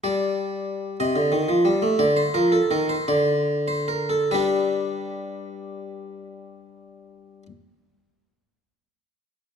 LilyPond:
<<
  \new Staff \with { instrumentName = "Harpsichord" } { \time 6/8 \key d \phrygian \tempo 4. = 46 d''4. ees''4. | d''16 c''16 bes'16 a'16 bes'16 c''16 d''8. c''16 bes'16 a'16 | <d' g' b'>2.~ | <d' g' b'>2. | }
  \new Staff \with { instrumentName = "Harpsichord" } { \clef bass \time 6/8 \key d \phrygian g4. c16 d16 ees16 f16 g16 a16 | d8 f8 ees8 d4. | g2.~ | g2. | }
>>